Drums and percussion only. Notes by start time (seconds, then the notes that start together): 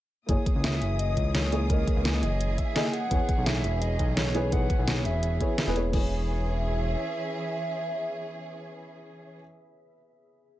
0.29 kick, closed hi-hat
0.46 kick, closed hi-hat
0.64 snare, closed hi-hat
0.82 closed hi-hat
0.99 closed hi-hat
1.17 kick, closed hi-hat
1.35 snare, closed hi-hat
1.52 closed hi-hat
1.70 kick, closed hi-hat
1.87 kick, closed hi-hat
2.05 snare, closed hi-hat
2.23 closed hi-hat
2.41 closed hi-hat
2.58 kick, closed hi-hat
2.76 snare, closed hi-hat
2.93 closed hi-hat
3.11 kick, closed hi-hat
3.29 kick, closed hi-hat
3.46 snare, closed hi-hat
3.64 closed hi-hat
3.82 closed hi-hat
3.99 kick, closed hi-hat
4.17 snare, closed hi-hat
4.35 closed hi-hat
4.52 kick, closed hi-hat
4.70 kick, closed hi-hat
4.88 snare, closed hi-hat
5.05 closed hi-hat
5.23 closed hi-hat
5.40 kick, closed hi-hat
5.58 snare, closed hi-hat
5.76 closed hi-hat
5.93 kick, crash